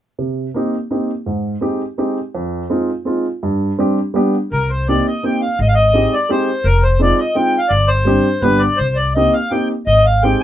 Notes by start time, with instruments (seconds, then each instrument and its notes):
0.19 upright piano C3
0.54 upright piano A#3 C4 D#4 G4
0.91 upright piano A#3 C4 D#4 G4
1.26 upright piano G#2
1.61 upright piano G#3 C4 D#4 G4
1.98 upright piano G#3 C4 D#4 G4
2.35 upright piano F2
2.70 upright piano G#3 C4 D#4 F4
3.05 upright piano G#3 C4 D#4 F4
3.43 upright piano G2
3.79 upright piano G3 C4 D4 G4
4.14 upright piano G3 B3 D4 G4
4.52 upright bass C2, accordion A#4
4.70 accordion C5
4.88 upright piano A#3 C4 D#4 G4, accordion D5
5.07 accordion D#5
5.23 upright piano A#3 C4 D#4 G4, accordion G5
5.41 accordion F5
5.59 upright bass G#1, accordion D#5
5.68 accordion F5
5.75 accordion D#5
5.93 upright piano G#3 C4 D#4 G4
6.13 accordion D5
6.29 upright piano G#3 C4 D#4 G4, accordion C5
6.64 upright bass F1, accordion A#4
6.83 accordion C5
6.99 upright piano G#3 C4 D#4 F4, accordion D5
7.18 accordion D#5
7.35 upright piano G#3 C4 D#4 F4, accordion G5
7.58 accordion F5
7.68 upright bass G1, accordion D5
7.88 accordion C5
8.05 upright piano G3 C4 D4 G4
8.41 upright bass G1, upright piano G3 B3 D4 G4, accordion B4
8.58 accordion D5
8.77 upright bass C2, accordion C5
8.95 accordion D5
9.15 upright piano A#3 C4 D#4 G4, accordion D#5
9.33 accordion F5
9.51 upright piano A#3 C4 D#4 G4, accordion G5
9.87 upright bass G#1, accordion D#5
10.06 accordion F5
10.23 upright piano G#3 C4 D#4 G4, accordion G5
10.40 accordion G#5